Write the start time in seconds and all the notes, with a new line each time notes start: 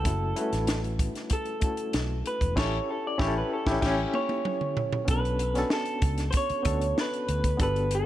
Already playing: A4
0.04 F#1 A3 C#4 E4 F#4 A4, kick, closed hi-hat
0.35 G3 C#4 E4 F#4 B4, closed hi-hat
0.41 A3
0.53 A1, snare, closed hi-hat
0.67 snare, closed hi-hat
0.84 closed hi-hat
0.99 kick, closed hi-hat
1.15 snare, closed hi-hat
1.30 A4, kick, closed hi-hat
1.45 closed hi-hat
1.60 A3 C#4 E4 F#4 A4, kick, closed hi-hat
1.77 closed hi-hat
1.93 B1, snare, closed hi-hat
2.26 B4, closed hi-hat
2.41 E1, kick, closed hi-hat
2.56 A1 C#4 E4 G4 A4 C#5, kick, snare, crash
2.90 A4
3.07 D5
3.18 A1 C#4 E4 G4 C#5, kick, snare
3.28 A4
3.38 B4
3.53 A4
3.67 A1 E4 G4, kick, snare
3.72 C#4
3.81 A1 E4 G4, kick, snare, crash
3.87 C#4
4.14 C#5, high tom
4.29 high tom
4.45 mid tom
4.61 mid tom
4.77 floor tom
4.93 floor tom
5.05 B1 B3 C#4 D4 F#4, kick, closed hi-hat
5.09 A4 B4
5.25 closed hi-hat
5.39 closed hi-hat
5.54 B3 C#4 D4 F#4, snare, closed hi-hat
5.59 A4
5.70 A4, snare
5.86 closed hi-hat
6.02 C#2, kick, closed hi-hat
6.18 snare, closed hi-hat
6.31 C5, kick, closed hi-hat
6.37 C#5
6.50 muted fingered electric bass stroke, closed hi-hat
6.63 D2 B3 C#4 D4 F#4, kick, closed hi-hat
6.67 A4
6.81 closed hi-hat
6.98 B4, snare
7.14 closed hi-hat
7.29 D2, closed hi-hat
7.44 kick, closed hi-hat
7.57 G1 B3 D4 F#4 G4, kick, closed hi-hat
7.62 A4 B4
7.76 closed hi-hat
7.91 A4, closed hi-hat